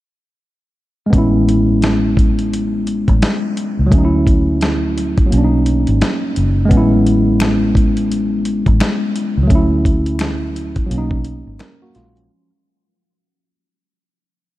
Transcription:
1.06 tine electric piano G#3 B3
1.13 fingered electric bass A1, tine electric piano C#4, kick, closed hi-hat
1.18 tine electric piano E4
1.49 closed hi-hat
1.82 snare, closed hi-hat
2.17 kick, closed hi-hat
2.39 closed hi-hat
2.53 closed hi-hat
2.87 closed hi-hat
3.08 fingered electric bass A1, kick, closed hi-hat
3.22 snare, closed hi-hat
3.57 closed hi-hat
3.79 fingered electric bass C#2
3.86 tine electric piano F#3 A3
3.92 fingered electric bass D2, tine electric piano C#4, kick, closed hi-hat
3.98 tine electric piano D#4
4.05 tine electric piano E4
4.27 kick, closed hi-hat
4.61 snare, closed hi-hat
4.98 closed hi-hat
5.18 kick, closed hi-hat
5.26 tine electric piano F#3
5.30 fingered electric bass B1, tine electric piano A#3 C#4, closed hi-hat
5.38 tine electric piano D4
5.44 tine electric piano D#4
5.66 closed hi-hat
5.87 fingered electric bass G#1, closed hi-hat
6.01 snare, closed hi-hat
6.36 fingered electric bass F#1, closed hi-hat
6.65 tine electric piano G#3 B3
6.71 fingered electric bass A1, tine electric piano C#4, kick, closed hi-hat
6.77 tine electric piano E4
7.06 closed hi-hat
7.40 finger snap, snare, closed hi-hat
7.75 kick, closed hi-hat
7.97 closed hi-hat
8.12 closed hi-hat
8.45 closed hi-hat
8.66 fingered electric bass A1, kick, closed hi-hat
8.80 finger snap, snare, closed hi-hat
9.16 closed hi-hat
9.38 fingered electric bass C#2
9.43 tine electric piano F#3
9.47 fingered electric bass D2, tine electric piano A3 C#4, kick, closed hi-hat
9.55 tine electric piano E4
9.85 kick, closed hi-hat
10.06 closed hi-hat
10.19 finger snap, snare, closed hi-hat
10.56 closed hi-hat
10.76 kick, closed hi-hat
10.86 tine electric piano F#3 A#3
10.91 fingered electric bass B1, tine electric piano C#4, closed hi-hat
10.98 tine electric piano D#4
11.11 kick
11.25 closed hi-hat
11.47 fingered electric bass G#1
11.59 tine electric piano C#4 A#4, finger snap, snare, closed hi-hat
11.82 tine electric piano A#3 F#4
11.95 fingered electric bass A#1, tine electric piano G#3 F4, snare, closed hi-hat
12.17 tine electric piano F3 C#4, closed hi-hat

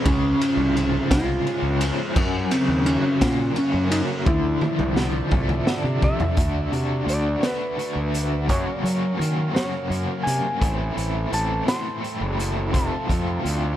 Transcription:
Already playing: tonewheel organ G#4
0.05 fingered electric bass C#2, overdriven electric guitar C#3, electric slide guitar C#4, tonewheel organ F5, kick, ride
0.41 overdriven electric guitar F3, ride
0.57 fingered electric bass C2
0.76 overdriven electric guitar F3, ride
1.11 fingered electric bass C2, overdriven electric guitar G#3, electric slide guitar F4, kick, snare, ride
1.47 overdriven electric guitar C#4, ride
1.62 fingered electric bass C#2
1.81 overdriven electric guitar F3, ride
2.16 fingered electric bass F#2, overdriven electric guitar F#2, tonewheel organ A#4 F#5, kick, crash
2.51 overdriven electric guitar C#3, electric slide guitar C4, ride
2.68 fingered electric bass D#2
2.86 overdriven electric guitar F#3, electric slide guitar C#4, ride
3.21 fingered electric bass A#2, overdriven electric guitar A#3, kick, snare, ride
3.56 overdriven electric guitar C#4, electric slide guitar C#4, ride
3.74 fingered electric bass F#2
3.90 overdriven electric guitar F#3, electric slide guitar D#4, ride
4.26 fingered electric bass D2, overdriven electric guitar D3, tonewheel organ F3 D5 E5, electric slide guitar E4, kick, high tom
4.61 overdriven electric guitar F3, high tom
4.79 fingered electric bass C2, mid tom
4.96 overdriven electric guitar F3, snare
5.31 fingered electric bass C2, overdriven electric guitar A3, kick, mid tom
5.49 mid tom
5.67 overdriven electric guitar D4, snare
5.84 fingered electric bass C3
6.02 overdriven electric guitar F3, electric slide guitar E5, kick
6.20 floor tom
6.37 fingered electric bass D2, overdriven electric guitar D3 A3 D4 F#4, tonewheel organ F#4 D5 E5, kick, closed hi-hat
6.71 fingered electric bass C3, overdriven electric guitar A3 D4 F#4, closed hi-hat
7.06 fingered electric bass D2, overdriven electric guitar D3 A3 D4 F#4, electric slide guitar D5, closed hi-hat
7.41 overdriven electric guitar D3 A3 D4 F#4, snare, closed hi-hat
7.46 electric slide guitar B4
7.77 overdriven electric guitar D3 A3 D4 F#4, closed hi-hat
7.96 fingered electric bass D2
8.14 closed hi-hat
8.47 overdriven electric guitar F#2 C#3 F#3 A#3 C#4 F#4, fingered electric bass F#2, tonewheel organ A#4 F5, electric slide guitar C#5, kick, closed hi-hat
8.83 fingered electric bass F#3, overdriven electric guitar F#3 A#3 C#4 F#4, closed hi-hat
9.17 fingered electric bass D#3, overdriven electric guitar F#3 A#3 C#4 F#4, closed hi-hat
9.54 overdriven electric guitar F#2 C#3 F#3 A#3 C#4 F#4, electric slide guitar C#5, snare, closed hi-hat
9.89 fingered electric bass F#2, overdriven electric guitar F#3 A#3 C#4 F#4, closed hi-hat
10.23 fingered electric bass C3, electric slide guitar G#5, closed hi-hat
10.60 fingered electric bass A1, overdriven electric guitar A2 E3 A3 C4 E4, tonewheel organ A4 C5, kick, closed hi-hat
10.96 fingered electric bass A1, overdriven electric guitar A3 C4 E4, closed hi-hat
11.31 fingered electric bass A1, overdriven electric guitar E3 A3 C4 E4, electric slide guitar A5, closed hi-hat
11.66 overdriven electric guitar A2 E3 A3 C4 E4, electric slide guitar C6, snare, closed hi-hat
12.01 overdriven electric guitar E3 A3 C4 E4, closed hi-hat
12.21 fingered electric bass F#1
12.39 closed hi-hat
12.71 fingered electric bass F1, overdriven electric guitar F2 C3 F3 A3 C4 F4, tonewheel organ F4 E5, electric slide guitar A5, kick, closed hi-hat
13.07 fingered electric bass F2, overdriven electric guitar F3 A3 C4 F4, kick, closed hi-hat
13.43 fingered electric bass D2, overdriven electric guitar F3 A3 C4 F4, closed hi-hat

